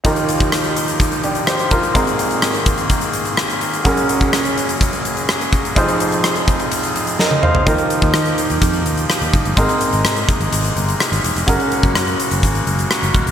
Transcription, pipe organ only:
<<
  \new Staff \with { instrumentName = "Pipe organ" } { \time 4/4 \key aes \lydian \tempo 4 = 126 << { g'1 | aes'1~ | aes'1~ | aes'1 |
g'1 | r1 | ges'1 | } \\ { ees'1 | c'1 | des'1 | ees'1 |
ees'1~ | ees'1 | r1 | } >> }
  \new Staff \with { instrumentName = "Pipe organ" } { \clef bass \time 4/4 \key aes \lydian << { bes1~ | bes1~ | bes1 | c'1 |
bes1 | aes1~ | aes1 | } \\ { f1 | ees1 | ges1 | f1 |
f1 | c1 | des1 | } >> }
>>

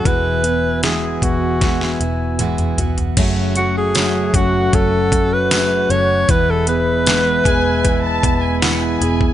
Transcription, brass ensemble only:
\new Staff \with { instrumentName = "Brass ensemble" } { \time 4/4 \key fis \minor \tempo 4 = 77 <fis' b' e'' gis''>1 | <a fis' cis'' fis''>1 | <gis b' e'' b''>1 | }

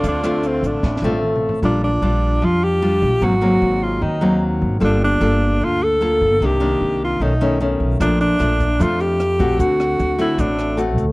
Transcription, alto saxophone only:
\new Staff \with { instrumentName = "Alto saxophone" } { \time 4/4 \key bes \lydian \tempo 4 = 151 d'4 c'8 d'4. r4 | d'8 d'4. f'8 g'4. | fis'4. f'8 dis'4 r4 | d'8 d'4. f'8 a'4. |
g'4. f'8 dis'4 r4 | d'8 d'4. f'8 g'4. | fis'4. e'8 d'4 r4 | }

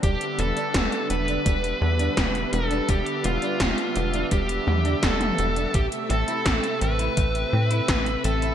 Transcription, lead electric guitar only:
\new Staff \with { instrumentName = "Lead electric guitar" } { \time 4/4 \key e \phrygian \tempo 4 = 84 g'8 a'4 b'2 a'8 | g'8 f'4. g'4 a'4 | g'8 a'4 b'2 a'8 | }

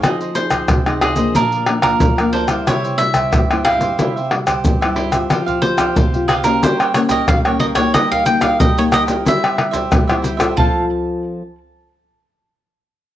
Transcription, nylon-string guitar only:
\new Staff \with { instrumentName = "Nylon-string guitar" } { \time 4/4 \key f \minor \tempo 4 = 91 << { f4 c4 bes,4 r4 | c4 g,4 c4 g,4 | f4 c4 g4 g4 | g4 g4 g4 g4 |
<f c' f' a'>8 r2. r8 | } \\ { <c' ees' aes'>8 <c' ees' aes'>8. <c' ees' aes'>8 <f bes d'>8. <f bes d'>8 r16 <f bes d'>8 <g c' e'>16~ | <g c' e'>8 <g c' e'>8. <g c' e'>8 <g c' e'>16 <g c' e'>16 r16 <g c'>8. <g c' e'>8 <c' f' g'>16~ | <c' f' g'>8 <c' f' g'>8 r16 <c' f' g'>8 <bes des' g'>8. <bes des' g'>8. <bes des' g'>8 <bes ees' g'>16~ | <bes ees' g'>8 <bes ees' g'>8 r16 <bes ees' g'>8 <c' e' g'>8. <c' e' g'>8 r16 <c' e' g'>8 <c' f' a'>16~ |
<c' f' a'>8 r2. r8 | } >> }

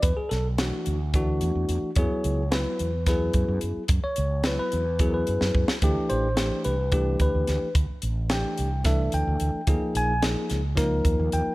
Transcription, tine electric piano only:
<<
  \new Staff \with { instrumentName = "Tine electric piano" } { \time 7/8 \key fis \minor \tempo 4 = 109 b'16 gis'16 a'8 r2 r8 | cis''4 b'4 b'4 r8 | r16 cis''4 b'4 <ais' b'>4 r16 | r8 c''4 b'4 b'4 |
r4 g''4 e''8 g''4~ | g''8 gis''8 r2 g''8 | }
  \new Staff \with { instrumentName = "Tine electric piano" } { \time 7/8 \key fis \minor r4 <e a d' fis'>8 r8 <e a d' fis'>4. | <fis b e' gis'>4 <fis b e'>8 r8 <fis b e' gis'>4. | r4 <fis b e' b'>8 r8 <fis b e' gis'>4. | <e a d' g'>4 <e a d' g'>8 r8 <e a d' g'>4. |
r4 <e a d' g'>8 r8 <e a d' a'>4. | <eis ais dis' gis'>4 <eis ais dis' gis'>8 r8 <eis ais dis' ais'>4. | }
>>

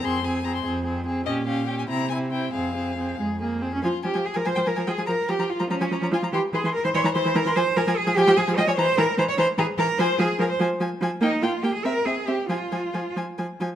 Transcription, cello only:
\new Staff \with { instrumentName = "Cello" } { \time 6/8 \key f \minor \tempo 4. = 97 f,4. f,4. | bes,4. c4. | f,4. f,4. | f'8 g'8 aes'16 bes'16 c''8 bes'8 aes'8 |
bes'8 g'8 f'8 des'4 f'8 | g'8 aes'8 bes'16 c''16 des''8 c''8 bes'8 | c''8 bes'8 aes'8 g'8 aes'8 ees''16 des''16 | c''8 bes'8 c''16 des''16 c''8 aes'8 bes'8 |
c''8 aes'8 bes'16 c''16 r4. | ees'8 f'8 g'16 aes'16 bes'8 aes'8 g'8 | f'4. r4. | }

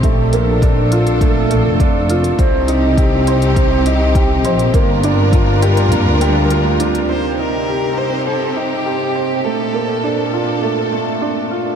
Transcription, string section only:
\new Staff \with { instrumentName = "String section" } { \time 4/4 \key c \dorian \tempo 4 = 102 <d' a'>1 | <c c' ees' g'>1 | <g d' f' bes'>1 | <c c' ees' g'>1 |
<bes, d' a'>1 | }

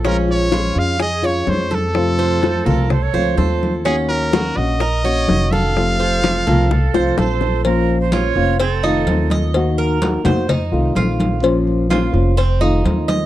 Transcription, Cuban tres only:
\new Staff \with { instrumentName = "Cuban tres" } { \time 4/4 \key f \phrygian \tempo 4 = 126 des'4 f'4 aes'8 des''4 a'8~ | a'8 c''4 a'4 c''8 a'4 | des'4 ges'4 bes'8 des''4 a'8~ | a'8 c''4 a'4 c''8 a'4 |
\key bes \minor r4 f'4 c'8 ees'4 ees''8~ | ees''8 bes'4 c''8 ees'4 f'4 | r4 f'4 c'8 ees'4 ees''8 | }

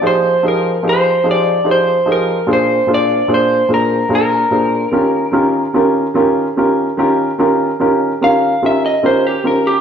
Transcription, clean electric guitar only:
\new Staff \with { instrumentName = "Clean electric guitar" } { \time 12/8 \key ees \major \tempo 4. = 49 c''8 bes'8 c''8 d''8 c''8 bes'8 c''8 d''8 c''8 bes'8 bes'4~ | bes'4 r2. f''8 e''16 ees''16 c''16 g'16 bes'16 g'16 | }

